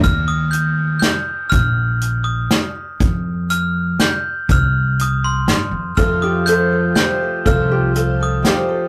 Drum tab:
HH |x-x-x-|x-x-x-|x-x-x-|x-x-x-|
SD |----o-|----o-|----o-|----o-|
BD |o-----|o-----|o-----|o-----|

HH |x-x-x-|x-x-x-|
SD |----o-|----o-|
BD |o-----|o-----|